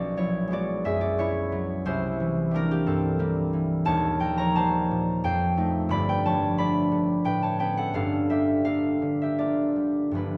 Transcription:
Already playing: B1 F#4 D5
0.17 F#3 E4 C#5
0.48 G#3 B3
0.52 F#4 D5
0.85 F#2 G#4 E5
1.01 F#4 D5
1.18 G#3 B3 E4 C#5
1.52 F#3
1.85 C2 E4 C5
2.20 E3
2.51 G3 A#3 D4
2.56 A#4
2.71 A#3 G4
2.86 G2 C4 A4
3.19 G3 A#3
3.53 E3
3.85 D#1 D#2 C#5 A5
4.20 F3 A#4 G5
4.38 C#5 A#5
4.55 G3 A#3 C5 A5
4.91 A#2
5.24 F2 C5 G5
5.57 A3 D#4
5.89 G1 G2 D5 B5
6.09 B4 G5
6.25 F3 C#5 A5
6.57 A3 D4 D5 B5
6.92 D3
7.25 A2 B4 G5
7.42 C#5 A5
7.59 B3 C#4 B4 G5
7.77 A4 F#5
7.94 G1 G2 A4 F5
8.29 G3 G4 E5
8.64 A#3 D4 A4 F5
9.02 D3
9.22 G4 E5
9.39 A#3 D4 F4 D5
9.76 G3
10.11 G1 G2 F3 A3
10.16 D4 B4

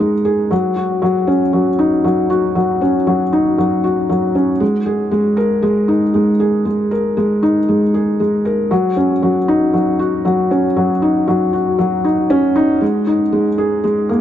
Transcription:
Already playing: D#4 G#4 A#4
0.00 G#3
0.25 G#4
0.51 F#3
0.76 F#4
1.02 F#3
1.27 C#4
1.53 F#3
1.79 D#4
2.04 F#3
2.30 F#4
2.55 F#3
2.81 C#4
3.07 F#3
3.33 D#4
3.58 F#3
3.84 F#4
4.09 F#3
4.35 C#4
4.60 G#3
4.86 G#4
5.11 G#3
5.37 A#4
5.62 G#3
5.88 D#4
6.14 G#3
6.40 G#4
6.65 G#3
6.91 A#4
7.17 G#3
7.43 D#4
7.68 G#3
7.94 G#4
8.20 G#3
8.45 A#4
8.71 F#3
8.97 C#4
9.22 F#3
9.48 D#4
9.74 F#3
9.99 F#4
10.25 F#3
10.51 C#4
10.76 F#3
11.02 D#4
11.28 F#3
11.53 F#4
11.79 F#3
12.04 D#4
12.30 C#4
12.56 D#4
12.81 G#3
13.07 D#4
13.32 G#3
13.58 G#4
13.84 G#3
14.09 A#3

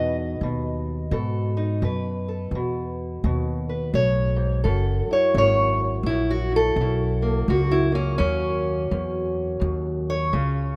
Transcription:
Already playing: E2 B2 D#4 D#5
0.41 D#2 B2
1.11 G#2 B2 A4
1.57 D#4
1.82 F#2 B2 B4
2.28 A4
2.51 E2 B2
3.24 D#2 B2
3.69 B4
3.94 B1 A2 C#5
4.36 G#2
4.64 F#1 F#2 A4
5.08 E4, muted upright bass stroke
5.13 C#5
5.34 G#1 F#2 C#5
6.03 A#1 E4
6.10 F#2
6.30 F#4
6.52 E4
6.56 A4
6.76 B1
6.80 F#2 E4
7.22 A#3
7.48 C#2 F#2 F#4
7.71 E4
7.92 A#3 C#4
8.18 D#2 F#2 C#4
8.91 E2 F#2
9.60 D#2 F#2
10.10 C#5
10.33 C#2 C#3 F4

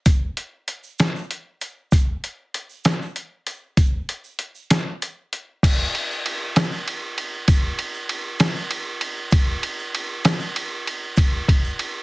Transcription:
0.06 kick, closed hi-hat, shaker
0.37 closed hi-hat
0.68 closed hi-hat
0.83 shaker
0.99 snare, closed hi-hat, shaker
1.16 shaker
1.31 closed hi-hat
1.61 closed hi-hat, shaker
1.92 kick, closed hi-hat, shaker
2.24 closed hi-hat
2.54 closed hi-hat
2.70 shaker
2.85 snare, closed hi-hat, shaker
3.02 shaker
3.16 closed hi-hat
3.47 closed hi-hat, shaker
3.77 kick, closed hi-hat, shaker
4.09 closed hi-hat
4.24 shaker
4.39 closed hi-hat
4.55 shaker
4.70 snare, closed hi-hat, shaker
5.02 closed hi-hat, shaker
5.33 closed hi-hat
5.63 kick, crash, ride, shaker
5.95 ride
6.11 shaker
6.26 ride
6.56 snare, ride, shaker
6.72 shaker
6.88 ride
7.18 ride
7.48 kick, ride, shaker
7.79 ride
7.94 shaker
8.09 ride
8.40 snare, ride, shaker
8.55 shaker
8.71 ride
9.01 ride
9.31 kick, ride, shaker
9.63 ride
9.79 shaker
9.95 ride
10.25 snare, ride, shaker
10.39 shaker
10.56 ride
10.87 ride
11.17 kick, ride, shaker
11.48 kick, ride
11.64 shaker
11.79 ride

